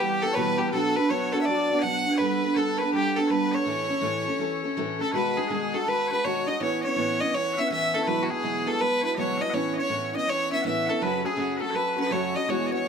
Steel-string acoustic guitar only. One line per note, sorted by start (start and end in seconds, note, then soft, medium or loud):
0.00 0.23 E3 medium
0.00 0.24 G3 medium
0.00 0.23 B3 medium
0.00 0.22 G4 medium
0.23 0.36 E3 soft
0.23 0.36 G3 soft
0.23 0.36 B3 soft
0.23 0.36 G4 medium
0.36 0.60 E2 medium
0.36 0.60 B2 medium
0.36 0.60 E3 medium
0.36 0.59 G3 medium
0.36 0.58 B3 medium
0.36 0.57 G4 loud
0.58 0.73 E3 soft
0.58 0.73 G3 medium
0.58 0.72 B3 soft
0.58 0.73 G4 medium
0.73 0.96 B2 medium
0.73 0.97 F#3 medium
0.73 0.97 B3 medium
0.73 0.96 D4 medium
0.73 0.94 F#4 medium
0.95 1.09 B3 soft
0.95 1.09 D4 medium
0.95 1.10 F#4 medium
1.09 1.33 B2 medium
1.09 1.33 F#3 medium
1.09 1.33 B3 medium
1.09 1.33 D4 medium
1.09 1.32 F#4 medium
1.33 1.47 B3 soft
1.33 1.47 D4 soft
1.33 1.47 F#4 medium
1.47 1.70 F#3 medium
1.47 1.71 B3 medium
1.47 1.70 D4 medium
1.47 1.69 F#4 medium
1.70 1.82 B3 soft
1.70 1.82 D4 soft
1.70 1.83 F#4 soft
1.82 2.06 B2 medium
1.82 2.07 F#3 medium
1.82 2.06 B3 medium
1.82 2.05 D4 medium
1.82 2.03 F#4 medium
2.05 2.19 B3 soft
2.05 2.20 D4 medium
2.05 2.19 F#4 medium
2.20 2.44 G3 medium
2.20 2.44 B3 medium
2.20 2.43 D4 medium
2.20 2.42 A4 medium
2.43 2.55 B3 medium
2.43 2.56 D4 medium
2.43 2.56 A4 medium
2.56 2.80 G3 medium
2.56 2.80 B3 medium
2.56 2.80 D4 medium
2.56 2.79 A4 medium
2.80 2.92 B3 soft
2.80 2.93 D4 soft
2.80 2.94 A4 medium
2.93 3.17 G3 medium
2.93 3.17 B3 medium
2.93 3.17 D4 medium
2.93 3.16 A4 medium
3.17 3.30 B3 soft
3.17 3.31 D4 medium
3.17 3.30 A4 medium
3.30 3.54 G3 medium
3.30 3.54 B3 medium
3.30 3.53 D4 medium
3.30 3.51 A4 medium
3.53 3.66 B3 soft
3.53 3.67 D4 soft
3.53 3.66 A4 medium
3.65 3.90 A2 medium
3.65 3.90 E3 medium
3.65 3.89 A3 medium
3.65 3.88 C#4 medium
3.65 3.87 A4 medium
3.88 4.01 A3 soft
3.88 4.02 C#4 medium
3.88 4.02 A4 medium
4.01 4.26 A2 medium
4.01 4.26 E3 medium
4.01 4.26 A3 medium
4.01 4.26 C#4 medium
4.01 4.25 A4 medium
4.26 4.38 A3 medium
4.26 4.39 C#4 medium
4.26 4.40 A4 medium
4.39 4.63 E3 medium
4.39 4.63 A3 medium
4.39 4.64 C#4 medium
4.39 4.62 A4 medium
4.64 4.76 A3 soft
4.64 4.77 C#4 medium
4.64 4.77 A4 medium
4.77 5.00 A2 medium
4.77 5.00 E3 medium
4.77 5.00 A3 loud
4.77 4.99 C#4 medium
4.77 4.98 A4 medium
4.99 5.13 A3 soft
4.99 5.13 C#4 soft
4.99 5.13 A4 medium
5.13 5.37 B2 medium
5.13 5.37 D#3 medium
5.13 5.37 G#3 medium
5.13 5.37 D#4 medium
5.13 5.36 F#4 medium
5.37 5.49 G#3 soft
5.37 5.50 D#4 soft
5.37 5.50 F#4 soft
5.49 5.73 B2 medium
5.49 5.74 D#3 medium
5.49 5.74 G#3 medium
5.49 5.74 D#4 medium
5.49 5.73 F#4 medium
5.74 5.86 G#3 soft
5.74 5.87 D#4 soft
5.74 5.87 F#4 medium
5.86 6.10 D#3 medium
5.86 6.11 G#3 medium
5.86 6.11 D#4 medium
5.86 6.10 F#4 medium
6.11 6.24 G#3 soft
6.11 6.24 D#4 soft
6.11 6.24 F#4 medium
6.24 6.47 B2 medium
6.24 6.48 D#3 medium
6.24 6.47 G#3 medium
6.24 6.46 D#4 medium
6.24 6.45 F#4 medium
6.46 6.61 G#3 soft
6.46 6.61 D#4 soft
6.46 6.60 F#4 medium
6.60 6.84 A2 medium
6.60 6.84 E3 medium
6.60 6.84 B3 medium
6.60 6.83 C#4 medium
6.60 6.82 E4 medium
6.83 6.96 B3 soft
6.83 6.97 C#4 medium
6.83 6.97 E4 medium
6.96 7.20 A2 medium
6.96 7.20 E3 medium
6.96 7.20 B3 medium
6.96 7.20 C#4 medium
6.96 7.19 E4 medium
7.20 7.33 B3 soft
7.20 7.34 C#4 soft
7.20 7.34 E4 medium
7.33 7.57 E3 medium
7.33 7.57 B3 medium
7.33 7.57 C#4 medium
7.33 7.55 E4 medium
7.57 7.70 B3 soft
7.57 7.71 C#4 medium
7.57 7.71 E4 medium
7.70 7.94 A2 medium
7.70 7.94 E3 medium
7.70 7.94 B3 medium
7.70 7.94 C#4 medium
7.70 7.93 E4 medium
7.94 8.06 B3 soft
7.94 8.07 C#4 medium
7.94 8.07 E4 medium
8.06 8.30 E2 medium
8.06 8.30 B2 medium
8.06 8.30 F#3 medium
8.06 8.30 G#3 medium
8.06 8.29 B3 medium
8.06 8.28 E4 medium
8.29 8.42 F#3 soft
8.29 8.42 G#3 soft
8.29 8.42 B3 medium
8.29 8.42 E4 medium
8.41 8.66 E2 medium
8.41 8.67 B2 medium
8.41 8.66 F#3 medium
8.41 8.66 G#3 medium
8.41 8.65 B3 medium
8.41 8.64 E4 medium
8.65 8.78 F#3 soft
8.65 8.79 G#3 soft
8.65 8.79 B3 medium
8.65 8.80 E4 medium
8.79 9.04 F#3 medium
8.79 9.03 G#3 medium
8.79 9.03 B3 medium
8.79 9.02 E4 medium
9.03 9.16 F#3 soft
9.03 9.16 G#3 soft
9.03 9.17 B3 soft
9.03 9.17 E4 medium
9.16 9.40 E2 medium
9.16 9.41 B2 medium
9.16 9.41 F#3 medium
9.16 9.40 G#3 medium
9.16 9.39 B3 medium
9.16 9.38 E4 medium
9.39 9.52 F#3 soft
9.39 9.53 G#3 soft
9.39 9.52 B3 medium
9.39 9.53 E4 medium
9.53 9.77 A2 medium
9.53 9.77 E3 medium
9.53 9.77 B3 medium
9.53 9.76 C#4 medium
9.53 9.74 E4 medium
9.76 9.89 B3 soft
9.76 9.89 C#4 medium
9.76 9.89 E4 soft
9.89 10.13 A2 medium
9.89 10.14 E3 medium
9.89 10.14 B3 medium
9.89 10.12 C#4 medium
9.89 10.11 E4 medium
10.12 10.25 B3 soft
10.12 10.27 C#4 soft
10.12 10.27 E4 medium
10.26 10.50 E3 medium
10.26 10.50 B3 medium
10.26 10.50 C#4 medium
10.26 10.50 E4 medium
10.51 10.64 B3 soft
10.51 10.64 C#4 medium
10.51 10.65 E4 medium
10.65 10.88 A2 medium
10.65 10.88 E3 medium
10.65 10.88 B3 medium
10.65 10.87 C#4 medium
10.65 10.86 E4 medium
10.87 11.02 B3 soft
10.87 11.01 C#4 soft
10.87 11.01 E4 medium
11.01 11.25 F#2 medium
11.01 11.25 C#3 medium
11.01 11.24 F#3 medium
11.01 11.23 A3 medium
11.01 11.22 C#4 medium
11.01 11.21 F#4 medium
11.22 11.36 F#3 soft
11.22 11.36 A3 soft
11.22 11.36 C#4 soft
11.22 11.37 F#4 medium
11.36 11.60 F#2 medium
11.36 11.61 C#3 medium
11.36 11.61 F#3 medium
11.36 11.61 A3 medium
11.36 11.61 C#4 medium
11.36 11.59 F#4 medium
11.60 11.72 F#3 soft
11.60 11.72 A3 soft
11.60 11.73 C#4 soft
11.60 11.73 F#4 soft
11.73 11.97 F#3 medium
11.73 11.97 A3 medium
11.73 11.96 C#4 medium
11.73 11.95 F#4 medium
11.96 12.10 F#3 soft
11.96 12.10 A3 soft
11.96 12.10 C#4 soft
11.96 12.11 F#4 medium
12.10 12.35 F#2 medium
12.10 12.34 C#3 medium
12.10 12.35 F#3 medium
12.10 12.35 A3 medium
12.10 12.34 C#4 medium
12.10 12.34 F#4 medium
12.35 12.48 F#3 soft
12.35 12.48 A3 soft
12.35 12.48 C#4 soft
12.35 12.48 F#4 medium
12.47 12.71 E2 medium
12.47 12.71 B2 medium
12.47 12.72 E3 medium
12.47 12.72 G#3 medium
12.47 12.71 B3 medium
12.47 12.70 F#4 medium
12.71 12.85 E3 soft
12.71 12.86 G#3 medium
12.71 12.86 B3 soft
12.71 12.85 F#4 medium